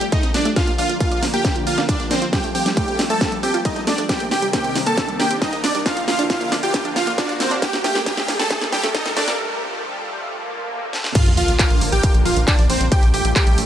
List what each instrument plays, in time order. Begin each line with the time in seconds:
Already playing: analog synth pad F3 G3 A3, riser
0.01 analog synth bass A#1, synth arpeggio sound G3, closed hi-hat
0.12 synth arpeggio sound A3, supersaw synth D#4 D#5, kick, closed hi-hat
0.23 analog synth bass A#1, synth arpeggio sound C4, closed hi-hat
0.34 analog synth bass A#1, synth arpeggio sound G3, supersaw synth D4 D5, snare, open hi-hat
0.45 analog synth bass A#1, synth arpeggio sound A3, closed hi-hat
0.56 analog synth pad D3 F3 A#3, synth arpeggio sound F4, supersaw synth F4 F5, kick, snare, closed hi-hat
0.67 analog synth bass A#1, synth arpeggio sound A#3, closed hi-hat
0.78 analog synth bass A#1, synth arpeggio sound D4, supersaw synth F4 F5, open hi-hat
0.89 analog synth bass A#1, synth arpeggio sound F4, closed hi-hat
1.00 synth arpeggio sound A#3, supersaw synth F4 F5, kick, closed hi-hat
1.12 analog synth bass A#1, synth arpeggio sound D4, closed hi-hat
1.23 analog synth bass A#1, synth arpeggio sound F4, snare, open hi-hat
1.34 analog synth bass A#1, synth arpeggio sound A#3, supersaw synth G4 G5, closed hi-hat
1.45 synth arpeggio sound D4, kick, snare, closed hi-hat
1.56 analog synth bass A#1, synth arpeggio sound F4, closed hi-hat
1.67 analog synth bass A#1, synth arpeggio sound A#3, supersaw synth F4 F5, open hi-hat
1.78 analog synth bass A#1, synth arpeggio sound D4, snare, closed hi-hat
1.89 supersaw synth D4 D5, synth arpeggio sound F4, kick, closed hi-hat
2.00 analog synth bass A#1, synth arpeggio sound A#3, closed hi-hat
2.11 analog synth bass A#1, supersaw synth C4 C5, synth arpeggio sound D4, snare, open hi-hat
2.22 analog synth bass A#1, synth arpeggio sound F4, closed hi-hat
2.33 synth arpeggio sound G3, analog synth pad G3 A3, supersaw synth G4 G5, kick, snare, closed hi-hat
2.44 analog synth bass A#1, synth arpeggio sound A3, closed hi-hat
2.55 analog synth bass A#1, synth arpeggio sound C4, supersaw synth G4 G5, open hi-hat
2.66 analog synth bass A#1, synth arpeggio sound G3, snare, closed hi-hat
2.77 synth arpeggio sound A3, supersaw synth G4 G5, kick, closed hi-hat
2.88 analog synth bass A#1, synth arpeggio sound C4, closed hi-hat
2.99 analog synth bass A#1, synth arpeggio sound G3, snare, open hi-hat
3.10 analog synth bass A#1, synth arpeggio sound A3, supersaw synth A4 A5, closed hi-hat
3.21 synth arpeggio sound C4, kick, snare, closed hi-hat
3.32 analog synth bass A#1, synth arpeggio sound G3, closed hi-hat
3.43 analog synth bass A#1, synth arpeggio sound C4, supersaw synth G4 G5, open hi-hat
3.54 analog synth bass A#1, synth arpeggio sound F4, closed hi-hat
3.65 synth arpeggio sound G3, supersaw synth D#4 D#5, kick, closed hi-hat
3.76 analog synth bass A#2, synth arpeggio sound A3, closed hi-hat
3.87 analog synth bass A#1, synth arpeggio sound A3, supersaw synth D4 D5, snare, open hi-hat
3.98 analog synth bass A#1, synth arpeggio sound A3, closed hi-hat
4.09 analog synth pad C3 D#3 A#3, synth arpeggio sound G3, supersaw synth G4 G5, kick, snare, closed hi-hat
4.20 analog synth bass A#1, synth arpeggio sound A#3, closed hi-hat
4.31 analog synth bass A#1, synth arpeggio sound C4, supersaw synth G4 G5, snare, open hi-hat
4.42 analog synth bass A#1, synth arpeggio sound G3, closed hi-hat
4.53 synth arpeggio sound A#3, supersaw synth G4 G5, kick, snare, closed hi-hat
4.64 analog synth bass A#1, synth arpeggio sound C4, closed hi-hat
4.75 analog synth bass A#1, synth arpeggio sound G3, snare, open hi-hat
4.87 analog synth bass A#1, synth arpeggio sound A#3, supersaw synth A4 A5, closed hi-hat
4.98 synth arpeggio sound C4, kick, snare, closed hi-hat
5.09 analog synth bass A#1, synth arpeggio sound G3, closed hi-hat
5.20 analog synth bass A#1, synth arpeggio sound A#3, supersaw synth G4 G5, snare, open hi-hat
5.31 analog synth bass A#1, synth arpeggio sound C4, closed hi-hat
5.42 synth arpeggio sound G3, supersaw synth D#4 D#5, kick, snare, closed hi-hat
5.53 analog synth bass A#1, synth arpeggio sound A#3, closed hi-hat
5.64 analog synth bass A#1, synth arpeggio sound C4, supersaw synth D4 D5, snare, open hi-hat
5.75 analog synth bass A#1, synth arpeggio sound G3, closed hi-hat
5.86 analog synth pad D3 F3, synth arpeggio sound D4, supersaw synth F4 F5, kick, snare, closed hi-hat
5.97 analog synth bass A#1, synth arpeggio sound F4, closed hi-hat
6.08 analog synth bass A#1, synth arpeggio sound A#3, supersaw synth F4 F5, snare, open hi-hat
6.19 analog synth bass A#1, synth arpeggio sound D4, closed hi-hat
6.30 synth arpeggio sound F4, supersaw synth F4 F5, kick, snare, closed hi-hat
6.41 analog synth bass A#1, synth arpeggio sound A#3, closed hi-hat
6.52 analog synth bass A#1, synth arpeggio sound D4, snare, open hi-hat
6.63 analog synth bass A#1, synth arpeggio sound F4, supersaw synth G4 G5, closed hi-hat
6.74 synth arpeggio sound A#3, kick, snare, closed hi-hat
6.85 analog synth bass A#1, synth arpeggio sound D4, closed hi-hat
6.96 analog synth bass A#1, synth arpeggio sound F4, supersaw synth F4 F5, snare, open hi-hat
7.07 analog synth bass A#1, synth arpeggio sound A#3, closed hi-hat
7.18 synth arpeggio sound D4, supersaw synth D4 D5, kick, snare, closed hi-hat
7.29 analog synth bass A#1, synth arpeggio sound F4, closed hi-hat
7.40 analog synth bass A#1, synth arpeggio sound A#3, supersaw synth C4 C5, snare, open hi-hat
7.51 analog synth bass A#1, synth arpeggio sound D4, closed hi-hat
7.62 analog synth pad G3 A3, synth arpeggio sound A#3, supersaw synth G4 G5, kick, snare, closed hi-hat
7.73 analog synth bass A#1, synth arpeggio sound G3, snare, closed hi-hat
7.84 analog synth bass A#1, synth arpeggio sound A3, supersaw synth G4 G5, snare, open hi-hat
7.95 synth arpeggio sound A#3, snare, closed hi-hat
8.06 synth arpeggio sound G3, supersaw synth G4 G5, kick, snare, closed hi-hat
8.17 analog synth bass A#1, synth arpeggio sound A3, snare, closed hi-hat
8.28 analog synth bass A#1, synth arpeggio sound A#3, snare, open hi-hat
8.39 synth arpeggio sound G3, supersaw synth A4 A5, snare, closed hi-hat
8.50 synth arpeggio sound A3, kick, snare, closed hi-hat
8.61 synth arpeggio sound A#3, snare, closed hi-hat
8.73 analog synth bass A#1, synth arpeggio sound G3, supersaw synth G4 G5, snare, open hi-hat
8.84 synth arpeggio sound A3, snare, closed hi-hat
8.95 synth arpeggio sound A#3, supersaw synth D#4 D#5, kick, snare, closed hi-hat
9.06 analog synth bass A#1, synth arpeggio sound G3, snare, closed hi-hat
9.17 synth arpeggio sound A3, supersaw synth D4 D5, snare, open hi-hat
9.28 analog synth bass A#1, synth arpeggio sound A#3, snare, closed hi-hat
9.39 analog synth pad F3
10.27 swell
10.93 snare
11.04 snare
11.15 analog synth pad D3 F3 A#3, supersaw synth F4 F5, kick, closed hi-hat, crash, sub drop
11.26 analog synth bass A#1, closed hi-hat
11.37 analog synth bass A#1, supersaw synth F4 F5, open hi-hat
11.48 analog synth bass A#1, closed hi-hat
11.59 supersaw synth F4 F5, kick, clap, closed hi-hat
11.70 analog synth bass A#1, closed hi-hat
11.81 analog synth bass A#1, open hi-hat
11.92 analog synth bass A#1, supersaw synth G4 G5, closed hi-hat
12.03 kick, closed hi-hat
12.14 analog synth bass A#1, closed hi-hat
12.25 analog synth bass A#1, supersaw synth F4 F5, open hi-hat
12.37 analog synth bass A#1, closed hi-hat
12.48 supersaw synth D4 D5, kick, clap, closed hi-hat
12.59 analog synth bass A#1, closed hi-hat
12.70 analog synth bass A#1, supersaw synth C4 C5, open hi-hat
12.81 analog synth bass A#1, closed hi-hat
12.92 analog synth pad F3 G3 A3, supersaw synth G4 G5, kick, closed hi-hat
13.03 analog synth bass A#1, closed hi-hat
13.14 analog synth bass A#1, supersaw synth G4 G5, open hi-hat
13.25 analog synth bass A#1, closed hi-hat
13.36 supersaw synth G4 G5, kick, clap, closed hi-hat
13.47 analog synth bass A#1, closed hi-hat
13.58 analog synth bass A#1, open hi-hat